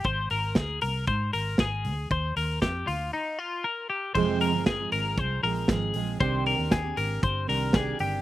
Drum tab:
CC |--------|--------|x-------|--------|
HH |xoxoxoxo|xoxo----|-oxoxoxo|xoxoxoxo|
SD |--o---o-|--o-----|--o---o-|--o---o-|
BD |o-o-o-o-|o-o-----|o-o-o-o-|o-o-o-o-|